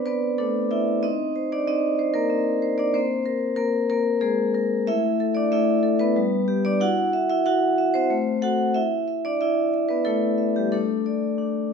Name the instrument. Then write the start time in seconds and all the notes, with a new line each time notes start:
vibraphone
Already playing: B3 C4 D4 B4 C5 D5
0.06 B3 B4 D5
0.38 A3 D4 A4
0.71 E4 D5 E5
1.03 C4 D#4 D#5
1.36 C5
1.52 D4 D5
1.67 C4 D#4 D#5
1.99 C5
2.14 A#3 A#4
2.30 C4
2.62 C5
2.78 D4 D5
2.94 A#3 C4 C5
3.26 A#4
3.56 A#3 A#4
3.90 A#3 A#4
4.21 G#3 A#3 G#4
4.54 A#4
4.87 A3 E4 E5
5.20 A4
5.35 D4 D5
5.52 A3 E4 E5
5.83 A4
5.99 B3 B4
6.16 G3
6.48 G4
6.65 D4 D5
6.81 E4 F#4 F#5
7.13 E5
7.30 E4 E5
7.46 E4 F#4 F#5
7.78 E5
7.94 C4 C5
8.10 A3
8.42 F#4 A4 F#5
8.74 E4 E5
9.08 E5
9.25 D4 D5
9.41 E4 E5
9.74 E5
9.89 B3 B4
10.05 A3 E4 A4
10.38 E5
10.56 G3 G4
10.72 A3 D4 A4
11.06 D5
11.38 D4